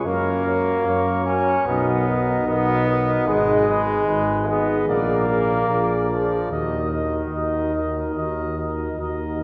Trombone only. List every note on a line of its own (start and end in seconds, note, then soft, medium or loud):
0.06 1.25 A#3 medium
1.26 1.67 C#4 medium
1.66 2.46 B3 medium
2.47 3.29 B3 medium
3.27 4.50 G#3 medium
4.48 4.88 B3 medium
4.89 5.93 A#3 medium
6.10 6.50 F3 medium
6.52 9.37 D#3 medium